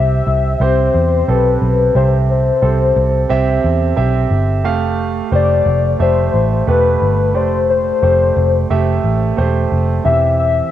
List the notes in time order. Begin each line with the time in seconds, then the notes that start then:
Already playing: C2 C3 C4 G4 E5
0.27 C2
0.60 C2 C4 G4 C5
0.94 E2
1.28 B1 C4 G4 A4 B4
1.61 B1
1.95 C2 C3 C4 G4 C5 E5
2.31 C5
2.62 C2 C4 G4 A4
2.96 C2
3.29 C2 C4 G4 E5
3.64 E2
3.96 B1 C4 G4 E5
4.31 G1
4.64 F1 A3 G4 F5
5.32 F1 A3 G4 C5 D5
5.66 F1
5.99 F1 A3 G4 C5 E5
6.34 A1
6.67 E1 A3 G4 B4
7.01 G1
7.34 F1 A3 G4 C5 D5
7.70 C5
8.02 F1 A3 G4 C5
8.36 F1
8.70 F1 A3 G4 E5
9.04 A1
9.37 E1 A3 G4 C5
9.72 F1
10.04 E1 E3 C4 G4 E5
10.39 E5